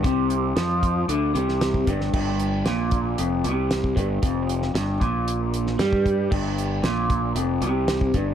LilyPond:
<<
  \new Staff \with { instrumentName = "Clean electric guitar" } { \clef bass \time 4/4 \key g \minor \tempo 4 = 115 c4 f4 d8 c4 g,8 | g,4 bes,4 f,8 c4 g,8 | f,4 g,8 bes,4. g4 | g,4 bes,4 f,8 c4 g,8 | }
  \new Staff \with { instrumentName = "Fingered electric bass" } { \clef bass \time 4/4 \key g \minor c,4 f,4 d,8 c,4 g,,8 | g,,4 bes,,4 f,,8 c,4 g,,8 | f,,4 g,,8 bes,,4. g,4 | g,,4 bes,,4 f,,8 c,4 g,,8 | }
  \new DrumStaff \with { instrumentName = "Drums" } \drummode { \time 4/4 <hh bd>8 hh8 <hh sn>8 <hh bd>8 hh8 hh16 sn16 <hh sn>16 bd16 <hh bd>16 sn16 | <cymc bd>8 hh8 <hh sn>8 <hh bd>8 hh8 hh8 <hh sn>16 bd16 <hh bd>8 | <hh bd>8 hh16 sn16 <hh sn>8 <hh bd>8 hh8 hh16 sn16 <hh sn>16 bd16 <hh bd>8 | <cymc bd>8 hh8 <hh sn>8 <hh bd>8 hh8 hh8 <hh sn>16 bd16 <hh bd>8 | }
>>